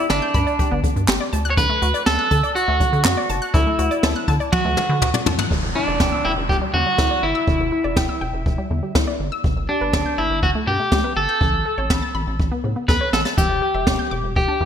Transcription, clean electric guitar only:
0.10 0.80 D4 medium
1.50 1.57 C#5 medium
1.57 2.06 B4 loud
2.06 2.55 A4 loud
2.55 3.57 F#4 loud
3.54 4.48 E4 medium
4.52 5.22 F#4 medium
5.75 6.26 D4 medium
6.25 6.31 E4 medium
6.49 6.56 G4 loud
6.74 7.24 F#4 loud
7.23 9.16 E4 medium
9.69 10.19 D4 medium
10.18 10.43 E4 medium
10.43 10.49 F#4 loud
10.67 11.16 G4 loud
11.17 12.11 A4 loud
12.88 13.11 B4 loud
13.13 13.20 A4 medium
13.38 14.32 G4 medium
14.36 14.65 G4 medium

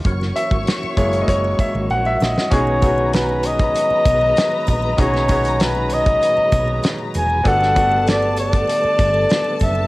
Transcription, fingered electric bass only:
0.05 0.31 F#1 loud
0.51 0.64 G#1 medium
0.83 muted fingered electric bass stroke soft
0.97 1.23 F#1 medium
1.28 1.54 F#1 medium
1.59 muted fingered electric bass stroke soft
1.75 1.87 G#1 medium
1.90 2.16 A#1 medium
2.21 2.34 A#1 medium
2.52 3.71 B1 loud
3.91 muted fingered electric bass stroke medium
4.06 4.31 B1 loud
4.68 4.94 A#1 medium
4.99 6.18 B1 loud
6.38 muted fingered electric bass stroke medium
6.52 6.78 B1 loud
7.15 7.40 E1 loud
7.45 8.64 G1 loud
8.84 muted fingered electric bass stroke medium
8.99 9.24 G1 loud
9.61 9.87 F#1 medium

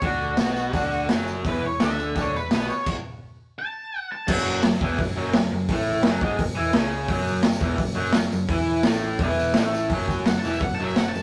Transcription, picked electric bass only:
0.02 0.36 D2 medium
0.39 0.72 B1 medium
0.74 1.07 D2 medium
1.10 1.43 F#1 loud
1.45 1.61 E1 medium
1.62 1.79 E1 medium
1.80 2.13 D2 medium
2.16 2.33 D2 medium
2.34 2.51 E1 medium
2.52 2.68 B1 medium
2.69 muted picked electric bass stroke soft
4.28 4.61 F#1 medium
4.64 4.80 F#1 medium
4.81 4.98 E1 loud
4.99 5.15 F#1 medium
5.17 5.33 F#1 loud
5.36 5.52 F#1 medium
5.53 5.68 F#1 medium
5.69 6.02 A1 medium
6.06 6.20 F#1 medium
6.21 6.38 G#1 loud
6.39 6.56 F#1 medium
6.57 6.73 E2 loud
6.74 7.07 C#2 loud
7.08 7.42 F#1 loud
7.44 7.60 F#1 medium
7.61 7.78 E1 loud
7.78 7.95 F#1 medium
7.97 8.13 F#1 loud
8.16 8.31 F#1 medium
8.32 8.48 F#1 medium
8.49 8.82 E2 medium
8.86 9.18 A1 medium
9.20 9.53 E1 loud
9.57 9.89 A1 medium
9.90 10.23 F#1 medium
10.26 10.42 F#1 medium
10.44 10.60 E1 loud
10.61 10.78 F#1 medium
10.80 10.96 F#1 loud
10.97 11.14 F#1 medium
11.14 11.22 F#1 medium

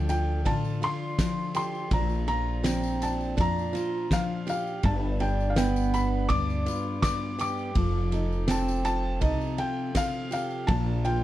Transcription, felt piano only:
0.09 0.47 G5 medium
0.46 0.84 A5 loud
0.84 1.55 C6 loud
1.57 1.90 C6 loud
1.93 2.26 A#5 loud
2.28 3.03 A#5 loud
3.03 3.40 A5 medium
3.40 4.14 A#5 loud
4.13 4.48 F5 medium
4.50 4.86 F5 medium
4.85 5.22 A5 medium
5.21 5.51 G5 medium
5.50 5.57 F5 medium
5.57 5.95 G5 medium
5.94 6.31 B5 medium
6.29 7.01 D6 loud
7.02 7.39 D6 loud
7.41 8.53 D6 loud
8.51 8.83 A5 medium
8.85 9.60 A5 loud
9.58 9.92 G5 medium
9.97 10.32 F5 loud
10.33 10.67 F5 medium
10.67 11.05 A5 loud
11.05 11.24 G5 medium

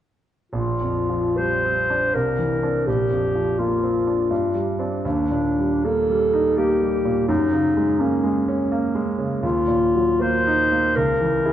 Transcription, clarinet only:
0.52 1.39 F4 soft
1.37 2.16 C5 medium
2.15 2.88 A#4 soft
2.86 3.61 G4 medium
3.59 4.68 F4 soft
5.04 5.86 D4 medium
5.85 6.59 A4 medium
6.57 7.28 G4 medium
7.28 8.01 D#4 medium
8.00 9.07 C#4 soft
9.42 10.23 F4 medium
10.21 10.97 C5 medium
10.96 11.53 A#4 medium

